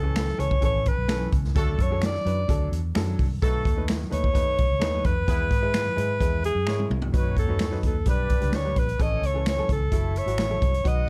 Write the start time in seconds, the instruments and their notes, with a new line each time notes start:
Already playing: fingered electric bass C#2, alto saxophone A4
0.03 grand piano E3 C#4 A4
0.16 finger snap, snare, closed hi-hat
0.27 snare
0.37 fingered electric bass C#2, grand piano E3 C#4 A4, alto saxophone C#5, closed hi-hat
0.51 kick
0.61 fingered electric bass A1, grand piano E3 C#4 A4, alto saxophone C#5, kick, closed hi-hat
0.86 alto saxophone B4, kick, closed hi-hat
0.97 fingered electric bass B1
1.08 grand piano E3 C#4 A4, finger snap, snare, closed hi-hat
1.32 fingered electric bass C#2, kick, closed hi-hat
1.44 snare
1.55 fingered electric bass D2, grand piano F#3 D4 A4, horn section A3 D4 F#4 A4, alto saxophone A4, kick, closed hi-hat
1.79 fingered electric bass F#2, alto saxophone C#5, kick, closed hi-hat
1.91 grand piano F#3 D4 A4
2.02 alto saxophone D5, finger snap, snare, closed hi-hat
2.14 snare
2.25 fingered electric bass F#2, grand piano F#3 D4 B4, closed hi-hat
2.48 fingered electric bass D2, grand piano F#3 D4 A4, kick, closed hi-hat
2.72 fingered electric bass E2, closed hi-hat
2.95 fingered electric bass F#2, grand piano F#3 D4 A4, finger snap, snare, closed hi-hat
3.19 fingered electric bass C2, kick, open hi-hat
3.42 fingered electric bass B1, grand piano A3 D#4 B4, horn section A3 D#4 F#4 A4, alto saxophone A4, kick, closed hi-hat
3.65 fingered electric bass D#2, kick, closed hi-hat
3.76 grand piano A3 D#4 B4
3.88 finger snap, snare, closed hi-hat
4.01 snare
4.10 fingered electric bass D#2, grand piano A3 D#4 B4, alto saxophone C#5, closed hi-hat
4.24 kick
4.33 grand piano A3 D#4 B4, kick, closed hi-hat
4.58 fingered electric bass B1, kick, closed hi-hat
4.70 fingered electric bass C#2
4.80 fingered electric bass D#2, grand piano A3 D#4 B4, finger snap, snare, closed hi-hat
5.04 fingered electric bass F2, alto saxophone B4, kick, closed hi-hat
5.27 fingered electric bass E2, grand piano G#3 E4 B4, horn section B3 E4 G#4 B4, kick, closed hi-hat
5.51 fingered electric bass G#2, kick, closed hi-hat
5.61 grand piano G#3 E4 B4
5.74 finger snap, snare, closed hi-hat
5.96 fingered electric bass G#2, grand piano G#3 E4 B4, closed hi-hat
6.20 fingered electric bass E2, grand piano G#3 E4 B4, kick, closed hi-hat
6.44 alto saxophone G#4, closed hi-hat
6.55 fingered electric bass F#2
6.66 fingered electric bass G#2, grand piano G#3 E4 C#5, finger snap, snare
6.79 high tom
6.90 fingered electric bass C2, mid tom
7.02 floor tom
7.12 fingered electric bass B1, grand piano F#3 D#4 B4, horn section C#4 D#4 F#4 C#5, kick, closed hi-hat
7.17 alto saxophone B4
7.37 fingered electric bass D#2, alto saxophone A4, kick, closed hi-hat
7.48 grand piano F#3 D#4 B4
7.59 finger snap, snare, closed hi-hat
7.71 grand piano F#3 D#4 B4, snare
7.83 fingered electric bass D#2, alto saxophone A4, kick, closed hi-hat
8.05 fingered electric bass B1, grand piano G3 D4 B4, horn section D4 G4 B4 D5, kick, closed hi-hat
8.10 alto saxophone B4
8.29 kick, closed hi-hat
8.40 fingered electric bass C#2, grand piano G3 D4 B4, closed hi-hat
8.53 fingered electric bass D2, alto saxophone C#5, finger snap, snare, closed hi-hat
8.65 grand piano G3 D4 B4
8.76 fingered electric bass A#1, alto saxophone B4, kick, closed hi-hat
8.88 closed hi-hat
8.99 fingered electric bass A1, grand piano E3 C#4 A4, horn section C#4 E4 A4 C#5, alto saxophone D#5, kick, closed hi-hat
9.22 fingered electric bass C#2, alto saxophone C#5, closed hi-hat
9.34 grand piano E3 C#4 A4
9.46 alto saxophone C#5, finger snap, snare, closed hi-hat
9.57 grand piano E3 C#4 A4
9.69 fingered electric bass C#2, alto saxophone A4, kick, closed hi-hat
9.91 fingered electric bass F#1, grand piano F#3 E4 A4, horn section E4 A4 C#5 E5, kick, closed hi-hat
10.16 alto saxophone C#5, closed hi-hat
10.26 fingered electric bass G#1, grand piano F#3 E4 F#4, closed hi-hat
10.38 fingered electric bass A1, finger snap, snare, closed hi-hat
10.50 grand piano F#3 E4 A4
10.62 fingered electric bass C2, kick, closed hi-hat
10.74 closed hi-hat
10.84 fingered electric bass B1, grand piano F#3 D#4 B4, horn section F#4 B4 D#5 F#5, alto saxophone D#5, kick, closed hi-hat